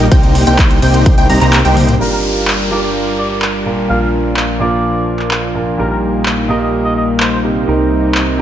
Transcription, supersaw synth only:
0.12 A#3 D#4 G4 C5 G5
0.47 A#3 D#4 G4 C5 G5
0.82 A#3 D#4 G4 C5 G5
1.18 A#3 D#4 G4 C5 G5
1.30 A#3 D#4 G4 C5 A#5
1.41 A#3 D#4 G4 C5 A#5
1.65 A#3 D#4 G4 C5 G5

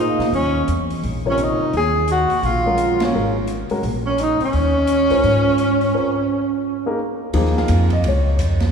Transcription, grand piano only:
Already playing: A#3 D#4 G#4 C5
1.26 C3 F4 A#4 C#5
2.66 F#3 G#3 C#4 A#4
3.15 G#3 C#4 F#4 A#4
3.71 G#3 C#4 F#4 A#4
5.10 F4 A#4 C5 C#5
5.94 C4 F4 A#4 C#5
6.86 A#3 D#4 G#4 A#4
7.34 F3 A#3 D#4 G#4
7.58 F5
7.93 D#5
8.08 C#5

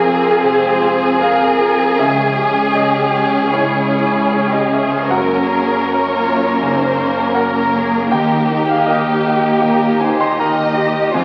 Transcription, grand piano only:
Already playing: F2 C4 G#4 C5 F5
0.05 F4
0.43 C3 G#5
0.83 C4
1.21 G#4 F5
1.60 F4
1.99 C#2 E5
2.39 C#4
2.75 C#5 D#5
3.16 G#3
3.54 G#2 C#5
3.94 C#4
4.32 C#5
4.52 D#5
4.71 G#4 E5
4.92 G#5
5.11 F#2 F#5
5.49 C#4
5.86 A#4 A#5
6.24 C#4
6.62 C#3 G#5
7.00 C#4
7.34 A#4 F#5
7.73 C#4
8.10 D#2 G5
8.49 D#4
8.69 F5
8.86 A#4 D#5
9.25 G4
9.62 A#2 G5
10.00 D#4 G#5
10.20 C6
10.39 A#4 A#5
10.77 G4
11.14 F2 G#5

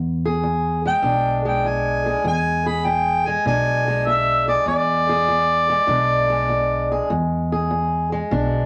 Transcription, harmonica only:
0.87 G5
1.47 G5
1.67 G#5
2.27 G#5
2.67 B5
2.86 G5
3.26 G#5
3.47 G#5
4.06 E5
4.48 D5
4.68 D5

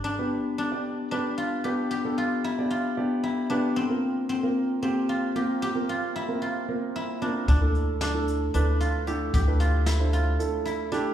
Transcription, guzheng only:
Already playing: E4 G4
0.04 D4
0.58 D4
1.11 D4
1.38 F4
1.64 G4
1.91 G4
2.18 F4
2.44 E4
2.71 F4
3.24 E4
3.50 D4
3.76 C4
4.29 C4
4.83 C4
5.09 F4
5.36 G4
5.62 G4
5.89 F4
6.16 E4
6.42 F4
6.96 E4
7.22 D4
7.48 D4
8.01 D4
8.54 D4
8.80 F4
9.07 G4
9.34 G4
9.60 F4
9.86 E4
10.13 F4
10.65 E4
10.92 D4

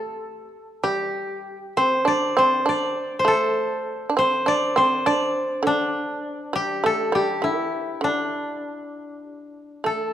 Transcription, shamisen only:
Already playing: A3
0.84 G3
1.77 C4
2.05 D4
2.37 C4
2.66 D4
3.03 C4
3.25 A3
4.09 D4
4.17 C4
4.46 D4
4.76 C4
5.06 D4
5.63 D3
6.53 G3
6.84 A3
7.12 G3
7.42 E3
8.01 D3
9.84 A3

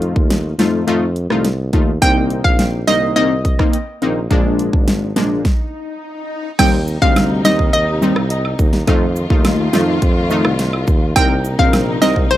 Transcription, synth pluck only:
2.02 G5
2.44 F5
2.88 D#5
3.16 D#5
6.59 G5
7.02 F5
7.45 D#5
7.73 D#5
11.16 G5
11.59 F5
12.02 D#5
12.31 C5

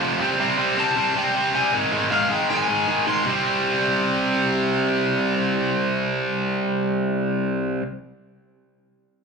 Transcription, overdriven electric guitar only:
0.80 A5
0.99 A5
1.18 G5
1.55 G#5
2.12 F5
2.31 G5
2.50 G#5
3.08 C6

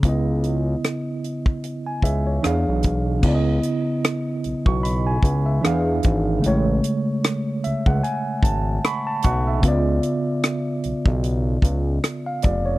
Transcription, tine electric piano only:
0.00 C#3 B3
0.06 E4 D#5
1.87 G#5
2.04 E5
2.27 C#5
2.42 E3 D4 G#4
2.46 F5
3.19 C#3 B3
3.25 E4 D5
3.35 D#5
4.67 C#6
4.83 B5
5.07 G#5
5.46 E5
5.61 E3 D4 G#4
5.66 F5
6.38 C#3 A3
6.44 G#3 C#5
7.64 E5
7.86 F#5
8.03 G#5
8.44 A5
8.85 B5 C#6
9.07 A5
9.24 F#5 C#6
9.47 E5
9.59 C#3 B3
9.65 F4 D5
12.26 F5
12.43 D5
12.66 C#5

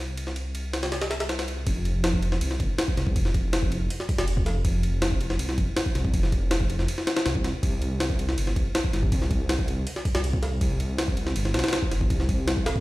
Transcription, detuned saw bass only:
Already playing: C2
1.67 F1
2.41 C2
2.60 F1
2.97 C2
3.16 F1
4.18 F1
4.65 F1
5.39 C2
5.58 F1
5.95 C2
6.14 F1
7.26 C2
7.44 C2
7.63 C2
8.38 G1
8.56 C2
8.94 G1
9.12 C2
10.15 C2
10.61 C2
11.36 G1
11.54 C2
11.92 G1
12.10 C2

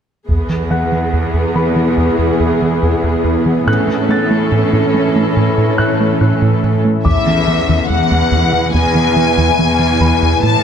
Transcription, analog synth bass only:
0.29 E2
0.49 E3
0.71 E3
0.92 E3
1.13 E2
1.34 E2
1.55 E3
1.76 E3
1.98 E2
2.19 E2
2.40 E2
2.62 E3
2.83 E2
3.04 E2
3.24 E2
3.46 E3
3.67 A2
3.88 A3
4.09 A3
4.31 A3
4.52 A2
4.73 A2
4.94 A3
5.16 A3
5.37 A2
5.58 A2
5.79 A2
6.00 A3
6.21 A2
6.42 A2
6.64 A2
6.85 A3
7.06 E2
7.27 E3
7.48 E3
7.69 E2
7.90 E2
8.11 E2
8.32 E2
8.53 E3
8.74 E2
8.95 E3
9.17 E3
9.38 E2
9.59 E3
9.79 E3
10.00 E2
10.22 E2
10.43 A2

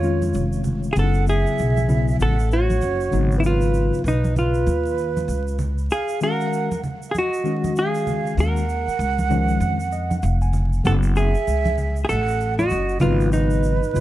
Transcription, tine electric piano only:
0.02 D#3 G#3 C#4 F4
0.95 C#3 F#3 B3 D#4
1.04 E4
1.87 C#3 F#3 B3 E4
3.11 C#3 F#3 B3 D#4
6.21 D#3 G#3 C#4 F#4
7.44 D#3 G#3 C#4 F#4
8.37 D#3 G#3 C#4 F#4
9.30 D#3 F3 G#3 C#4
9.92 D#5
10.10 F#5
10.23 F5
10.42 G#5
10.84 C#3 F#3 B3 E4
13.01 C#3 F#3 B3 D#4
13.93 C#3 F#3 A#3 F4

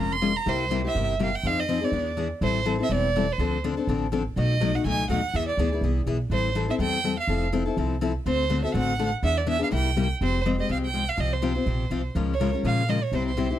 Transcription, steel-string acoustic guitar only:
Already playing: F3 G#3 C#4 F4 A#4
0.21 F3 G#3 C#4 F4 A#4
0.46 C3 G3 A#3 E4 G4
0.71 C3 G3 A#3 E4 G4
0.84 A#3 E4 G4
0.96 C3 G3 A#3 E4 G4
1.19 C3 G3 A#3 E4 G4
1.44 F3 C4 D#4 G#4
1.69 F3 C4 D#4 G#4
1.81 C4 D#4 G#4
1.93 E3 B3 D4 G#4
2.17 E3 B3 D4 G#4
2.42 E3 G3 C4 E4 A4
2.65 E3 G3 C4 E4 A4
2.79 C4 E4 A4
2.90 E3 G3 C4 E4 A4
3.16 E3 G3 C4 E4 A4
3.39 D3 F3 C4 D4 A4
3.64 D3 F3 C4 D4 A4
3.77 C4 D4 A4
3.88 D3 F3 C4 D4 A4
4.12 D3 F3 C4 D4 A4
4.37 B2 F#3 A3 D#4 F#4
4.60 B2 F#3 A3 D#4 F#4
4.74 A3 D#4 F#4
4.85 B2 F#3 A3 D#4 F#4
5.09 B2 F#3 A3 D#4 F#4
5.34 E3 B3 E4 G#4
5.59 E3 B3 E4 G#4
5.72 B3 E4 G#4
5.83 E3 B3 E4 G#4
6.07 E3 B3 E4 G#4
6.31 E3 G3 C4 E4 A4
6.55 E3 G3 C4 E4 A4
6.68 C4 E4 A4
6.80 E3 G3 C4 E4 A4
7.04 E3 G3 C4 E4 A4
7.28 F3 C4 E4 A4
7.52 F3 C4 E4 A4
7.66 C4 E4 A4
7.77 F3 C4 E4 A4
8.01 F3 C4 E4 A4
8.26 D3 A3 C4 F#4 A4
8.50 D3 A3 C4 F#4 A4
8.64 C4 F#4 A4
8.74 D3 A3 C4 F#4 A4
8.99 D3 A3 C4 F#4 A4
9.23 E3 B3 D4 G#4
9.47 E3 B3 D4 G#4
9.59 B3 D4 G#4
9.71 C3 G3 A#3 E4 G4
9.97 C3 G3 A#3 E4 G4
10.21 F3 G#3 C4 G4
10.46 F3 G#3 C4 G4
10.58 G#3 C4 G4
10.69 F3 G#3 C4 G4
10.93 F3 G#3 C4 G4
11.17 C3 F3 C4 F4 G4
11.42 C3 F3 C4 F4 G4
11.55 C4 F4
11.66 C3 F3 C4 F4 G4
11.91 C3 F3 C4 F4 G4
12.15 C#3 F3 G#3 C#4 F4 A#4
12.40 C#3 F3 G#3 C#4 F4 A#4
12.53 G#3 C#4 A#4
12.65 C#3 F3 G#3 C#4 F4 A#4
12.88 C#3 F3 G#3 C#4 F4 A#4
13.13 C3 G3 C4 E4 G4
13.37 C3 G3 C4 E4 G4
13.50 C4 E4 G4

